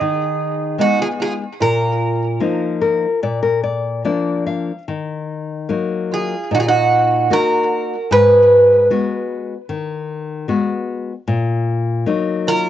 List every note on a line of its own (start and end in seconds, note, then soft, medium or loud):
0.00 0.77 D#3 medium
0.00 0.75 D#4 medium
0.00 0.81 G#4 medium
0.78 1.43 G#3 soft
0.78 1.43 B3 soft
0.78 0.97 D#4 medium
0.78 1.44 D#4 medium
0.78 1.00 F#4 medium
0.99 1.04 F4 medium
0.99 1.07 G#4 medium
1.20 1.31 F4 medium
1.20 1.32 G#4 medium
1.60 2.39 A#2 medium
1.60 4.42 F4 medium
1.60 4.43 A#4 medium
2.40 3.05 F3 soft
2.40 3.06 A#3 soft
2.40 3.06 D#4 medium
2.82 3.19 A#4 medium
3.23 4.02 A#2 medium
3.23 3.42 D5 medium
3.43 3.62 A#4 medium
3.64 4.02 D5 medium
4.05 4.71 F3 soft
4.05 4.71 A#3 soft
4.05 4.71 D4 soft
4.05 4.43 D5 medium
4.46 4.84 F5 medium
4.88 5.67 D#3 medium
5.69 6.34 F#3 soft
5.69 6.33 A#3 soft
5.69 6.34 D#4 soft
6.12 6.48 F4 medium
6.12 6.53 G#4 medium
6.51 7.28 A#2 medium
6.51 6.57 D#4 medium
6.51 6.59 F#4 medium
6.57 6.63 F4 medium
6.57 6.65 G#4 medium
6.66 7.27 D#4 medium
6.66 7.33 F#4 medium
7.30 7.94 A#3 soft
7.30 7.95 D#4 soft
7.30 8.07 F#4 medium
7.30 7.95 F#4 medium
7.30 8.12 A#4 medium
8.11 8.88 G#2 medium
8.11 8.87 G#4 medium
8.11 8.87 B4 medium
8.90 9.54 G#3 medium
8.90 9.53 B3 soft
8.90 9.54 F#4 medium
9.69 10.45 D#3 medium
10.48 11.11 G#3 soft
10.48 11.12 B3 soft
10.48 11.12 F#4 medium
11.28 12.04 A#2 medium
12.06 12.69 F#3 medium
12.06 12.69 A#3 medium
12.06 12.69 D#4 soft
12.47 12.69 F4 medium
12.47 12.69 A#4 loud